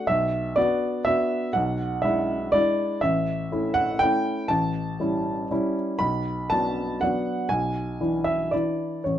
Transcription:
0.07 0.55 B1 medium
0.07 0.56 E5 medium
0.56 1.03 B3 soft
0.56 1.03 D4 soft
0.56 1.03 F#4 medium
0.56 1.06 D5 medium
1.05 1.51 B3 soft
1.05 1.51 D4 soft
1.05 1.51 F#4 soft
1.05 1.54 E5 medium
1.53 2.02 B1 medium
1.53 2.03 F#5 medium
2.02 2.50 G#3 soft
2.02 2.50 D4 soft
2.02 2.51 E4 medium
2.02 2.53 E5 medium
2.52 2.99 G#3 soft
2.52 2.99 D4 medium
2.52 2.99 E4 medium
2.52 3.02 D5 loud
3.01 3.50 A1 medium
3.01 3.75 E5 medium
3.52 3.97 A3 soft
3.52 3.97 C#4 soft
3.52 3.97 E4 soft
3.74 4.00 F#5 loud
3.99 4.47 A3 soft
3.99 4.47 C#4 soft
3.99 4.47 E4 medium
3.99 4.49 G5 loud
4.48 4.98 A1 medium
4.48 5.75 A5 medium
5.00 5.47 G3 soft
5.00 5.47 C#4 soft
5.00 5.47 E4 medium
5.51 5.97 G3 soft
5.51 5.97 C#4 soft
5.51 5.97 E4 medium
5.99 6.49 B1 medium
5.99 6.50 B5 medium
6.50 6.98 F#3 soft
6.50 6.99 B3 soft
6.50 6.99 D4 soft
6.50 7.01 A5 medium
7.01 7.47 F#3 soft
7.01 7.48 B3 soft
7.01 7.48 D4 soft
7.01 7.50 F#5 medium
7.49 7.99 B1 medium
7.49 8.25 G#5 medium
8.01 8.49 E3 soft
8.01 8.49 D4 soft
8.01 8.49 E4 soft
8.24 8.52 E5 medium
8.51 9.02 E3 soft
8.51 9.02 D4 soft
8.51 9.02 E4 soft
8.51 9.05 D5 medium
9.04 9.19 A1 soft
9.04 9.19 C#5 medium

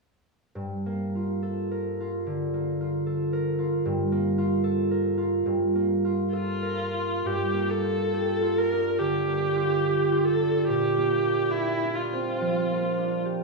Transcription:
0.55 3.84 G2 soft
0.86 2.52 A#3 soft
1.15 1.99 F4 soft
1.42 3.05 A4 soft
1.71 3.32 A#4 soft
2.00 2.80 F4 soft
2.26 3.87 D3 soft
2.54 4.11 A#3 soft
2.81 3.57 F4 soft
3.06 4.63 A4 soft
3.33 4.90 A#4 soft
3.59 4.37 F4 soft
3.85 5.45 G2 soft
4.12 5.74 A#3 soft
4.38 5.16 F4 soft
4.64 6.32 A4 soft
4.91 6.61 A#4 soft
5.18 6.04 F4 soft
5.46 7.24 G2 soft
5.75 7.53 A#3 soft
6.05 6.93 F4 soft
6.33 7.27 F4 soft
6.33 7.28 A4 soft
6.63 10.53 A#4 soft
6.94 7.83 F4 soft
7.25 10.72 G2 soft
7.25 7.72 G4 soft
7.54 9.26 A#3 soft
7.70 8.59 A4 soft
7.84 8.41 F4 soft
8.14 9.83 G4 soft
8.42 9.54 F4 soft
8.57 9.00 A#4 medium
8.72 10.39 D4 soft
8.99 10.72 D3 soft
8.99 10.26 G4 soft
9.27 10.96 A#3 soft
9.56 10.10 F4 soft
9.84 11.53 G4 soft
10.11 13.44 F4 soft
10.24 10.68 A4 medium
10.40 11.24 D4 soft
10.68 13.44 A#2 soft
10.68 11.52 G4 medium
10.98 12.69 A#3 soft
11.25 11.83 D4 soft
11.51 11.96 E4 medium
11.51 13.24 G4 soft
11.84 12.97 D4 soft
11.95 13.22 F4 soft
12.13 13.44 C4 soft
12.41 13.44 F3 soft
12.70 13.44 A#3 soft
12.98 13.44 D4 soft
13.25 13.44 G4 soft

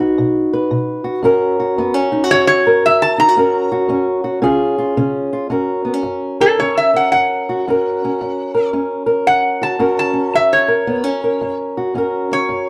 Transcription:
0.00 0.15 B2 medium
0.00 1.23 D#4 medium
0.00 1.04 F#4 medium
0.00 0.52 B4 medium
0.18 0.68 B2 medium
0.53 1.23 B4 medium
0.71 1.20 B2 medium
1.04 1.24 F#4 medium
1.23 1.73 F#2 medium
1.23 1.78 C#4 medium
1.23 1.58 F#4 medium
1.23 2.65 A#4 medium
1.60 2.12 F#4 medium
1.78 2.27 F#2 medium
1.78 1.94 B3 medium
1.94 3.36 C#4 medium
2.12 2.24 D#4 medium
2.24 3.18 F#4 medium
2.31 2.81 F#2 medium
2.31 2.46 C#5 loud
2.47 2.82 C#5 medium
2.67 3.36 A#4 medium
2.86 3.34 F#2 medium
2.86 3.02 E5 medium
3.02 3.19 A5 loud
3.18 3.29 D#4 medium
3.18 3.71 A#5 loud
3.29 3.36 F#4 medium
3.36 3.86 F#2 medium
3.36 3.88 C#4 medium
3.36 3.71 F#4 medium
3.36 4.42 A#4 medium
3.72 4.23 F#4 medium
3.89 4.39 F#2 medium
3.89 4.41 C#4 medium
4.24 4.41 F#4 medium
4.42 4.92 C#3 medium
4.42 4.96 C#4 medium
4.42 4.77 F4 medium
4.42 5.51 G#4 medium
4.78 5.32 F4 medium
4.97 5.47 C#3 medium
4.97 5.48 C#4 medium
5.33 5.49 F4 medium
5.50 6.00 F#2 medium
5.50 5.84 C#4 medium
5.50 7.49 F#4 medium
5.50 6.40 A#4 medium
5.85 5.94 B3 medium
5.94 6.57 C#4 soft
6.03 6.53 F#2 medium
6.40 6.58 A4 medium
6.40 6.93 A#4 medium
6.59 7.08 F#2 medium
6.59 7.68 C#4 medium
6.59 6.76 C#5 medium
6.77 6.94 E5 medium
6.94 7.70 A#4 medium
6.94 7.11 F#5 medium
7.12 7.62 F#2 medium
7.12 8.69 F#5 medium
7.49 7.68 F#4 medium
7.67 8.16 F#2 medium
7.67 8.04 C#4 medium
7.67 9.61 F#4 medium
7.67 8.54 A#4 medium
8.05 8.73 C#4 medium
8.21 8.70 F#2 medium
8.55 9.06 A#4 medium
8.73 9.23 F#2 medium
8.73 9.79 C#4 medium
9.06 9.80 A#4 medium
9.26 9.77 F#2 medium
9.26 9.62 F#5 medium
9.62 9.79 F#4 medium
9.62 9.98 A5 medium
9.79 10.30 F#2 medium
9.79 10.13 C#4 medium
9.79 11.77 F#4 medium
9.79 10.68 A#4 medium
9.99 10.34 A5 medium
10.13 10.87 C#4 medium
10.34 10.84 F#2 medium
10.34 10.52 E5 medium
10.53 11.57 C#5 medium
10.68 11.22 A#4 medium
10.87 11.38 F#2 medium
10.87 11.04 B3 medium
11.04 11.94 C#4 medium
11.24 11.94 A#4 medium
11.41 11.91 F#2 medium
11.77 11.96 F#4 medium
11.94 12.45 F#2 medium
11.94 12.30 C#4 medium
11.94 12.69 F#4 medium
11.94 12.69 A#4 medium
12.31 12.69 C#4 medium
12.31 12.69 C#5 medium
12.49 12.69 F#2 medium

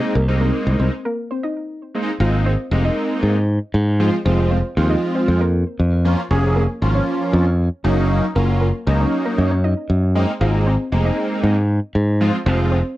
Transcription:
0.00 0.13 G#3 medium
0.00 0.13 A#3 medium
0.00 0.14 C4 medium
0.00 0.14 D#4 loud
0.15 0.50 C2 medium
0.15 0.27 A#3 medium
0.15 0.26 A#4 medium
0.28 0.92 G#3 medium
0.28 0.92 A#3 medium
0.28 0.92 C4 medium
0.28 0.92 D#4 medium
0.41 0.52 A#3 medium
0.41 0.52 A#4 medium
0.67 0.75 C2 loud
0.79 0.88 C2 medium
0.79 0.91 C4 medium
0.79 0.91 C5 medium
1.05 1.17 A#3 medium
1.05 1.16 A#4 medium
1.31 1.42 C4 medium
1.31 1.42 C5 medium
1.43 1.80 D#4 medium
1.43 1.80 D#5 medium
1.95 2.11 G#3 medium
1.95 2.11 A#3 medium
1.95 2.11 C4 medium
1.95 2.11 D#4 loud
2.20 2.55 G#1 loud
2.20 2.52 G#3 medium
2.20 2.52 A#3 medium
2.20 2.52 C4 medium
2.20 2.53 D#4 medium
2.20 2.32 F4 medium
2.20 2.32 F5 medium
2.46 2.58 C4 medium
2.46 2.57 C5 medium
2.71 2.89 F1 loud
2.71 3.36 G#3 medium
2.71 3.36 A#3 medium
2.71 3.36 C4 medium
2.71 3.36 D#4 medium
2.85 3.21 D#4 medium
2.85 3.21 D#5 medium
3.23 3.58 G#2 medium
3.74 4.09 G#2 medium
4.00 4.16 F3 medium
4.00 4.16 G#3 medium
4.00 4.16 C4 medium
4.00 4.16 F4 loud
4.25 4.60 F1 loud
4.25 4.57 F3 medium
4.25 4.58 G#3 medium
4.25 4.58 C4 medium
4.25 4.37 C4 medium
4.25 4.58 F4 medium
4.25 4.37 C5 medium
4.51 4.63 C4 medium
4.51 4.62 C5 medium
4.77 4.94 D#2 medium
4.77 5.41 F3 medium
4.77 5.41 G#3 medium
4.77 5.41 C4 medium
4.77 5.41 F4 medium
4.90 5.01 D#4 medium
4.90 5.01 D#5 medium
5.15 5.27 C4 medium
5.15 5.26 C5 medium
5.28 5.63 F2 medium
5.41 5.64 A#3 medium
5.41 5.63 A#4 medium
5.80 6.14 F2 medium
6.05 6.21 F3 medium
6.05 6.21 A#3 medium
6.05 6.21 C#4 medium
6.05 6.21 F4 loud
6.30 6.65 F1 loud
6.30 6.63 F3 medium
6.30 6.63 A#3 medium
6.30 6.63 C#4 medium
6.30 6.42 C#4 medium
6.30 6.63 G#4 medium
6.30 6.42 C#5 medium
6.56 6.68 A#3 medium
6.56 6.67 A#4 medium
6.82 6.99 G#1 medium
6.82 7.46 F3 medium
6.82 7.46 A#3 medium
6.82 7.46 C#4 medium
6.82 7.46 F4 medium
6.95 7.31 C#4 medium
6.95 7.31 C#5 medium
7.33 7.68 F2 medium
7.84 8.19 F#1 loud
7.84 8.25 F#3 medium
7.84 8.25 A#3 medium
7.84 8.25 C#4 medium
7.84 8.26 D#4 loud
8.35 8.71 F#1 loud
8.35 8.67 F#3 medium
8.35 8.67 A#3 medium
8.35 8.47 A#3 medium
8.35 8.68 C#4 medium
8.35 8.68 F4 medium
8.35 8.47 A#4 medium
8.61 8.73 A#3 medium
8.61 8.73 A#4 medium
8.87 9.04 C#2 loud
8.87 9.51 F#3 medium
8.87 9.51 A#3 medium
8.87 9.51 C#4 medium
8.87 9.51 D#4 medium
9.00 9.12 C#4 medium
9.00 9.11 C#5 medium
9.26 9.37 A#3 medium
9.26 9.37 A#4 medium
9.38 9.73 F#2 medium
9.51 9.63 C#4 medium
9.51 9.62 C#5 medium
9.64 10.01 D#4 medium
9.64 10.00 D#5 medium
9.90 10.24 F#2 medium
10.15 10.31 G#3 medium
10.15 10.31 A#3 medium
10.15 10.31 C4 medium
10.15 10.31 D#4 loud
10.41 10.76 G#1 loud
10.41 10.73 G#3 medium
10.41 10.73 A#3 medium
10.41 10.73 C4 medium
10.41 10.73 D#4 medium
10.41 10.52 F4 medium
10.41 10.52 F5 medium
10.67 10.78 C4 medium
10.67 10.78 C5 medium
10.92 11.10 F1 medium
10.92 11.56 G#3 medium
10.92 11.56 A#3 medium
10.92 11.56 C4 medium
10.92 11.56 D#4 medium
11.05 11.42 D#4 medium
11.05 11.41 D#5 medium
11.43 11.78 G#2 medium
11.95 12.30 G#2 medium
12.20 12.36 F3 medium
12.20 12.36 G#3 medium
12.20 12.36 C4 medium
12.20 12.37 F4 loud
12.46 12.81 F1 loud
12.46 12.78 F3 medium
12.46 12.78 G#3 medium
12.46 12.78 C4 medium
12.46 12.58 C4 medium
12.46 12.78 F4 medium
12.46 12.57 C5 medium
12.72 12.83 C4 medium
12.72 12.83 C5 medium

